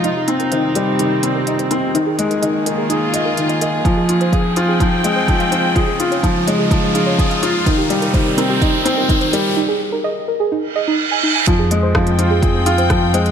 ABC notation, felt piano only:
X:1
M:4/4
L:1/8
Q:1/4=126
K:Fm
V:1 name="Felt piano"
E C E, G, E, C E C | E, A, E, E A e E, e | F, F A F F, A, F, F | A F F, A, F, F A F |
E, G, E, C E C E, G, | z8 | F, A, F, F A F F, A, |]